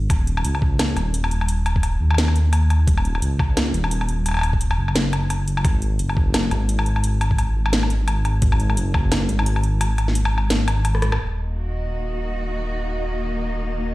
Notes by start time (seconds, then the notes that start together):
0.10 D#1, kick, closed hi-hat, low woodblock
0.27 closed hi-hat
0.37 low woodblock
0.45 C#2, closed hi-hat
0.55 low woodblock
0.62 kick
0.79 snare, closed hi-hat, low woodblock
0.96 D#1, closed hi-hat, low woodblock
1.14 closed hi-hat
1.24 low woodblock
1.31 closed hi-hat
1.41 low woodblock
1.48 closed hi-hat
1.66 closed hi-hat, low woodblock
1.76 kick
1.83 closed hi-hat, low woodblock
2.00 D#2
2.11 low woodblock
2.14 snare, closed hi-hat, low woodblock
2.18 low woodblock
2.23 low woodblock
2.28 low woodblock
2.36 closed hi-hat
2.53 closed hi-hat, low woodblock
2.70 closed hi-hat, low woodblock
2.87 D#1, kick, closed hi-hat
2.98 low woodblock
3.05 closed hi-hat
3.15 low woodblock
3.22 C#2, closed hi-hat
3.39 kick, low woodblock
3.57 snare, closed hi-hat, low woodblock
3.74 D#1, closed hi-hat
3.84 low woodblock
3.91 closed hi-hat
4.01 low woodblock
4.09 closed hi-hat
4.26 closed hi-hat, low woodblock
4.29 low woodblock
4.31 low woodblock
4.34 low woodblock
4.37 low woodblock
4.39 low woodblock
4.41 closed hi-hat, low woodblock
4.43 low woodblock
4.53 kick
4.61 closed hi-hat
4.71 low woodblock
4.78 F#1
4.88 low woodblock
4.96 snare, closed hi-hat
5.13 closed hi-hat, low woodblock
5.30 closed hi-hat, low woodblock
5.47 F#1, closed hi-hat
5.57 low woodblock
5.65 G#1, kick, closed hi-hat, low woodblock
5.82 closed hi-hat
5.99 F#1, closed hi-hat
6.09 low woodblock
6.17 kick
6.34 snare, closed hi-hat, low woodblock
6.51 G#1, closed hi-hat, low woodblock
6.69 closed hi-hat
6.79 low woodblock
6.86 closed hi-hat
6.96 low woodblock
7.04 closed hi-hat
7.21 closed hi-hat, low woodblock
7.31 kick
7.38 closed hi-hat, low woodblock
7.55 G#1
7.66 low woodblock
7.73 snare, closed hi-hat
7.83 low woodblock
7.90 closed hi-hat
8.08 closed hi-hat, low woodblock
8.25 closed hi-hat, low woodblock
8.42 G#1, kick, closed hi-hat
8.52 low woodblock
8.60 closed hi-hat
8.70 low woodblock
8.77 F#1, closed hi-hat
8.94 kick, low woodblock
9.12 snare, closed hi-hat, low woodblock
9.29 G#1, closed hi-hat
9.39 low woodblock
9.46 closed hi-hat
9.56 low woodblock
9.64 closed hi-hat
9.81 closed hi-hat, low woodblock
9.98 closed hi-hat, low woodblock
10.08 snare
10.15 closed hi-hat
10.25 low woodblock
10.33 G#1
10.38 low woodblock
10.50 snare, closed hi-hat
10.68 closed hi-hat, low woodblock
10.85 closed hi-hat, low woodblock
10.95 cross-stick
11.02 G#1, cross-stick, closed hi-hat
11.12 cross-stick, low woodblock
11.19 D#1 D#3, closed hi-hat
11.44 A#3
11.54 F#4, closed hi-hat
11.69 D#5
11.89 closed hi-hat